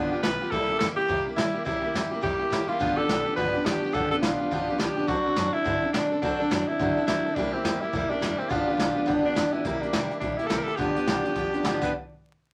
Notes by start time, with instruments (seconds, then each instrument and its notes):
Already playing: upright bass C2, steel-string acoustic guitar G2 D3 F3 B3 F4 G4, tenor saxophone D4
0.11 steel-string acoustic guitar B3 F4 G4, muted upright bass stroke
0.15 steel-string acoustic guitar F3
0.23 upright bass B1, steel-string acoustic guitar F3 B3 F4, tenor saxophone B4, snare
0.27 steel-string acoustic guitar G4
0.41 steel-string acoustic guitar F3 B3 F4 G4
0.51 upright bass C2, steel-string acoustic guitar C3 G3 A#3 E4 G4, tenor saxophone A4, kick, open hi-hat
0.70 steel-string acoustic guitar A#3 E4 G4, muted upright bass stroke
0.79 upright bass E2, steel-string acoustic guitar G3 A#3 E4, tenor saxophone A4, snare
0.84 steel-string acoustic guitar G4
0.96 steel-string acoustic guitar A#3 E4 G4, tenor saxophone G4
1.08 upright bass F2, steel-string acoustic guitar C3 G3 A#3 E4 G4, kick, open hi-hat
1.26 steel-string acoustic guitar A#3 E4 G4
1.36 upright bass A2, steel-string acoustic guitar G3 A#3 E4 G4, tenor saxophone E4, snare
1.54 steel-string acoustic guitar A#3 E4 G4, muted upright bass stroke
1.65 upright bass C2, steel-string acoustic guitar C3 G3 A#3 E4 G4, tenor saxophone E4, kick, open hi-hat
1.81 steel-string acoustic guitar A#3 E4 G4, muted upright bass stroke
1.94 upright bass E2, steel-string acoustic guitar G3 A#3 E4 G4, snare, open hi-hat
2.11 steel-string acoustic guitar A#3 E4 G4, muted upright bass stroke
2.21 upright bass F2, steel-string acoustic guitar C3 G3 A#3 E4 G4, tenor saxophone G4, kick, open hi-hat
2.39 steel-string acoustic guitar A#3 E4 G4, muted upright bass stroke
2.50 upright bass A2, steel-string acoustic guitar G3 A#3 E4 G4, snare, open hi-hat
2.68 steel-string acoustic guitar A#3 E4 G4, tenor saxophone F4, muted upright bass stroke
2.79 upright bass G1, steel-string acoustic guitar G2 D3 F3 B3 D4 G4, kick, open hi-hat
2.97 steel-string acoustic guitar F3 B3 D4 G4, tenor saxophone A4, muted upright bass stroke
3.08 upright bass B1, steel-string acoustic guitar F3 B3 D4 G4, snare
3.25 steel-string acoustic guitar F3 B3 D4 G4, muted upright bass stroke
3.36 upright bass C2, steel-string acoustic guitar G2 D3 F3 B3 D4 G4, tenor saxophone B4, kick, open hi-hat
3.54 steel-string acoustic guitar F3 B3 D4 G4, muted upright bass stroke
3.65 upright bass E2, steel-string acoustic guitar F3 B3 D4 G4, tenor saxophone G4, snare
3.82 steel-string acoustic guitar F3 B3 D4 G4, muted upright bass stroke
3.93 upright bass G1, steel-string acoustic guitar G2 D3 F3 B3 D4 G4, tenor saxophone A4, kick, open hi-hat
4.11 steel-string acoustic guitar F3 B3 D4 G4, tenor saxophone A4, muted upright bass stroke
4.22 upright bass B1, steel-string acoustic guitar F3 B3 D4, tenor saxophone F4, snare
4.27 steel-string acoustic guitar G4
4.39 steel-string acoustic guitar B3 D4 G4, muted upright bass stroke
4.43 steel-string acoustic guitar F3
4.51 upright bass C2, steel-string acoustic guitar G2 D3 F3 B3 D4 G4, kick, open hi-hat
4.68 steel-string acoustic guitar B3 D4 G4, muted upright bass stroke
4.72 steel-string acoustic guitar F3
4.78 upright bass C2, steel-string acoustic guitar F3 B3 D4 G4, tenor saxophone G4, snare, open hi-hat
4.96 steel-string acoustic guitar F3 B3 D4 G4, muted upright bass stroke
5.07 upright bass D2, steel-string acoustic guitar D3 F#3 C4 D4 A4, tenor saxophone F#4, kick, open hi-hat
5.26 steel-string acoustic guitar C4 D4 A4, muted upright bass stroke
5.36 upright bass F#2, steel-string acoustic guitar F#3 C4 D4 A4, snare
5.53 steel-string acoustic guitar C4 D4 A4, tenor saxophone E4
5.65 upright bass G2, steel-string acoustic guitar D3 F#3 C4 D4 A4, kick, open hi-hat
5.82 steel-string acoustic guitar C4 D4 A4, muted upright bass stroke
5.92 upright bass B2, steel-string acoustic guitar F#3 C4 D4, tenor saxophone D4, snare
5.97 steel-string acoustic guitar A4
6.12 steel-string acoustic guitar C4 D4 A4, muted upright bass stroke
6.21 upright bass D2, steel-string acoustic guitar D3 F#3 C4 D4 A4, tenor saxophone D4, kick, open hi-hat
6.40 steel-string acoustic guitar C4 D4 A4, muted upright bass stroke
6.50 upright bass F#2, steel-string acoustic guitar F#3 C4 D4 A4, snare
6.68 steel-string acoustic guitar D4 A4, tenor saxophone E4
6.72 steel-string acoustic guitar C4
6.79 upright bass G2, steel-string acoustic guitar D3 F#3 C4 D4 A4, kick, open hi-hat
6.97 steel-string acoustic guitar C4 D4 A4
7.07 upright bass D2, steel-string acoustic guitar F#3 C4 D4 A4, tenor saxophone E4, snare, open hi-hat
7.25 steel-string acoustic guitar C4 D4 A4, muted upright bass stroke
7.35 upright bass C2, steel-string acoustic guitar C3 G3 A#3 E4, tenor saxophone D4, kick, open hi-hat
7.39 steel-string acoustic guitar G4
7.52 tenor saxophone C4, steel-string acoustic guitar E4 G4, muted upright bass stroke
7.57 steel-string acoustic guitar A#3
7.64 upright bass E2, steel-string acoustic guitar G3 A#3 E4, snare
7.68 steel-string acoustic guitar G4
7.80 tenor saxophone E4, steel-string acoustic guitar E4 G4
7.85 steel-string acoustic guitar A#3
7.93 upright bass F2, steel-string acoustic guitar C3 G3 A#3 E4 G4, kick, open hi-hat
8.10 steel-string acoustic guitar A#3 E4 G4, tenor saxophone D4
8.21 upright bass F1, steel-string acoustic guitar G3 A#3 E4 G4, snare
8.38 steel-string acoustic guitar A#3 E4 G4, tenor saxophone C4
8.49 upright bass G1, steel-string acoustic guitar G2 D3 F3 B3 D4 G4, tenor saxophone F4, kick, open hi-hat
8.67 steel-string acoustic guitar F3 B3 D4 G4
8.77 upright bass B1, steel-string acoustic guitar F3 B3 D4 G4, snare
8.95 steel-string acoustic guitar F3 B3 D4 G4, muted upright bass stroke
9.05 upright bass C2, steel-string acoustic guitar G2 D3 F3 B3 D4 G4, kick, open hi-hat
9.23 steel-string acoustic guitar F3 B3 D4 G4, tenor saxophone D4, muted upright bass stroke
9.34 upright bass E2, steel-string acoustic guitar F3 B3 D4 G4, snare
9.52 steel-string acoustic guitar F3 B3 D4 G4, tenor saxophone E4
9.64 upright bass C2, steel-string acoustic guitar C3 G3 A#3 E4 G4, kick, closed hi-hat
9.81 steel-string acoustic guitar A#3 E4 G4, tenor saxophone D4, muted upright bass stroke, closed hi-hat
9.93 upright bass E2, steel-string acoustic guitar C3 G3 A#3 E4 G4, snare, closed hi-hat
10.11 steel-string acoustic guitar A#3 E4 G4, closed hi-hat
10.20 upright bass A#1, steel-string acoustic guitar G3 A#3 E4, tenor saxophone D4, kick, closed hi-hat
10.24 steel-string acoustic guitar G4
10.37 tenor saxophone E4, steel-string acoustic guitar E4 G4, muted upright bass stroke, closed hi-hat
10.42 steel-string acoustic guitar A#3
10.47 upright bass C2, steel-string acoustic guitar C3 G3 A#3 E4, tenor saxophone A4, snare, closed hi-hat
10.51 steel-string acoustic guitar G4
10.58 tenor saxophone A#4
10.63 steel-string acoustic guitar G4, tenor saxophone A4
10.68 steel-string acoustic guitar A#3 E4, closed hi-hat
10.76 upright bass G1, steel-string acoustic guitar G2 D3 F3 B3 D4 G4, tenor saxophone G4, kick, closed hi-hat
10.95 steel-string acoustic guitar F3 B3 D4 G4, muted upright bass stroke, closed hi-hat
11.06 upright bass B1, steel-string acoustic guitar G2 D3 F3 B3 D4 G4, snare, closed hi-hat
11.24 steel-string acoustic guitar F3 B3 D4 G4, closed hi-hat
11.36 upright bass F1, steel-string acoustic guitar F3 B3 D4 G4, kick, closed hi-hat
11.52 steel-string acoustic guitar F3 B3 D4 G4, closed hi-hat
11.63 upright bass G1, steel-string acoustic guitar G2 D3 F3 B3 D4 G4, snare, closed hi-hat
11.81 upright bass G1, steel-string acoustic guitar G2 D3 F3 B3 D4 G4, tenor saxophone B4, kick, crash